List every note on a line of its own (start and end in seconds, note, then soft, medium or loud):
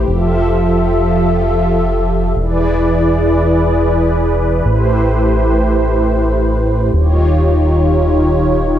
0.00 2.33 G4 medium
0.08 2.34 F1 medium
0.08 2.34 F3 medium
0.08 2.34 F4 medium
0.08 2.34 A4 medium
0.08 2.34 E5 medium
2.37 4.62 E1 medium
2.37 4.63 E3 medium
2.37 4.63 E4 medium
2.37 4.63 G#4 medium
2.37 6.90 B4 medium
2.37 4.63 D5 medium
4.65 6.91 A1 medium
4.65 6.91 A3 medium
4.65 6.91 E4 medium
4.65 6.92 G4 medium
4.65 6.92 C5 medium
6.94 8.79 D#1 medium
6.94 8.79 D#3 medium
6.94 8.79 D#4 medium
6.94 8.79 F4 medium
6.94 8.79 G4 medium
6.94 8.79 C#5 medium